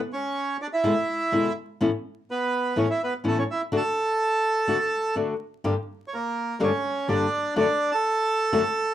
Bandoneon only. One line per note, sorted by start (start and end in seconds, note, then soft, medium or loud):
0.13 0.57 C#4 medium
0.13 0.57 C#5 medium
0.62 0.67 D4 medium
0.62 0.67 D5 medium
0.73 1.53 E4 medium
0.73 1.53 E5 medium
2.31 2.74 B3 medium
2.31 2.79 B4 medium
2.78 2.88 C#4 medium
2.78 2.88 C#5 medium
2.90 3.00 E4 medium
2.90 3.02 E5 medium
3.04 3.14 B3 soft
3.04 3.14 B4 medium
3.27 3.37 A3 medium
3.27 3.38 A4 medium
3.39 3.44 C#4 medium
3.39 3.44 C#5 medium
3.51 3.62 E4 medium
3.51 3.61 E5 medium
3.77 5.15 A4 medium
3.77 5.15 A5 medium
6.08 6.14 C#5 soft
6.14 6.58 A#3 soft
6.14 6.63 A#4 medium
6.63 7.08 C#4 medium
6.63 7.07 C#5 medium
7.09 7.55 D4 medium
7.09 7.54 D5 medium
7.57 7.92 D4 medium
7.57 7.91 D5 medium
7.92 8.94 A4 medium
7.92 8.94 A5 medium